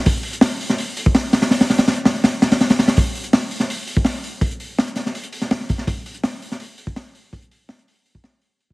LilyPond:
\new DrumStaff \with { instrumentName = "Drums" } \drummode { \time 4/4 \tempo 4 = 165 <hho bd>8 hho16 hh16 <hho sn>8 hho16 sn16 hho8 hho16 bd16 <hho sn>8 <hho sn>16 <hho sn>16 | <hho sn>16 <hho sn>16 <hho sn>16 <hho sn>16 <hho sn>16 hh16 <hho sn>16 sn16 <hho sn>8 <hho sn>16 <hho sn>16 <hho sn>16 <hho sn>16 <hho sn>16 <hho sn>16 | <hho bd>8 hho16 hh16 <hho sn>8 hho16 sn16 hho8 hho16 bd16 <hho sn>8 hho8 | <hho bd>16 hh16 hho8 <hho sn>16 hh16 <hho sn>16 sn16 hho16 hh16 hho16 sn16 <hho sn>16 sn16 <hho bd>16 sn16 |
<hho bd>8 hho16 hh16 <hho sn>8 hho16 sn16 hho8 hho16 bd16 <hho sn>8 hho8 | <hho bd>16 hh16 hho8 <hho sn>16 hh16 hho8 hho16 bd16 <hho sn>8 hho8 hho16 bd16 | }